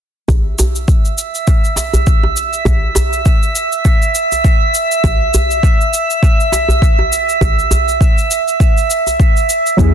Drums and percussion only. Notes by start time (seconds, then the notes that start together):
0.28 kick, djembe bass, cabasa
0.59 djembe slap, djembe bass, cabasa
0.76 cabasa
0.88 kick, cabasa
1.05 cabasa
1.18 cabasa
1.35 cabasa
1.47 kick, cabasa
1.64 cabasa
1.76 djembe slap, djembe tone, cabasa
1.93 djembe bass, cabasa
2.07 kick, cabasa
2.23 djembe tone
2.37 cabasa
2.53 cabasa
2.65 kick, djembe bass, cabasa
2.95 djembe slap, djembe tone, djembe bass, cabasa
3.13 cabasa
3.26 kick, cabasa
3.43 cabasa
3.56 cabasa
3.72 cabasa
3.85 kick, cabasa
4.02 cabasa
4.15 cabasa
4.32 djembe tone, cabasa
4.44 kick, cabasa
4.75 cabasa
4.92 cabasa
5.04 kick, djembe bass, cabasa
5.34 djembe slap, djembe bass, cabasa
5.51 cabasa
5.63 kick, cabasa
5.81 cabasa
5.94 cabasa
6.10 cabasa
6.23 kick, cabasa
6.40 cabasa
6.52 djembe slap, djembe tone, cabasa
6.68 djembe bass, cabasa
6.82 kick, cabasa
6.99 djembe tone
7.13 cabasa
7.29 cabasa
7.41 kick, djembe bass, cabasa
7.59 cabasa
7.71 djembe slap, djembe tone, djembe bass, cabasa
7.89 cabasa
8.01 kick, cabasa
8.18 cabasa
8.31 cabasa
8.48 cabasa
8.60 kick, cabasa
8.77 cabasa
8.90 cabasa
9.07 djembe tone, cabasa
9.20 kick, cabasa
9.37 cabasa
9.50 cabasa
9.67 cabasa
9.78 kick, djembe bass, cabasa